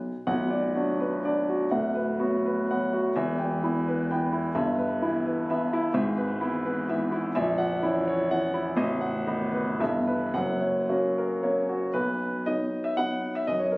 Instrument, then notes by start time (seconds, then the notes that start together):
grand piano
Already playing: B1
0.27 B0 B1 F#5
0.50 D5
0.76 F#3 D4 F#4
1.00 B4
1.25 F#3 D4 D5
1.49 F#4
1.71 D1 D2 F#5
1.95 B4
2.20 F#3 B3 F#4
2.46 B4
2.71 F#3 B3 F#5
2.93 F#4
3.16 E1 E2 E5
3.38 G5
3.64 E3 B3 E4
3.88 B4
4.11 E3 B3 G5
4.33 E4
4.55 G1 G2 E5
4.78 B4
5.02 E3 B3 E4
5.27 B4
5.50 E3 B3 E5
5.73 E4
5.94 G#1 G#2 E5
6.17 B4
6.41 E3 B3 E4
6.65 B4
6.89 E3 B3 E5
7.12 E4
7.35 A#0 A#1 E5
7.58 F#5
7.83 E3 C#4 E4
8.08 C#5
8.31 E3 C#4 F#5
8.54 E4
8.77 A0 A1 D#5
9.01 F#5
9.27 D#3 B3 D#4
9.53 B4
9.80 G1 G2 E3 B3 E5
10.07 B4
10.34 F#1 F#2 F#5
10.60 C#5
10.89 F#3 A#3 C#4 F#4
11.18 A#4
11.43 F#3 A#3 C#4 C#5
11.69 F#4
11.94 B1 B4
12.46 F#3 B3 D#4 D#5
12.84 E5
12.97 F#3 B3 D#4 F#5
13.35 E5
13.47 F#2 D#5
13.60 C#5
13.72 A#4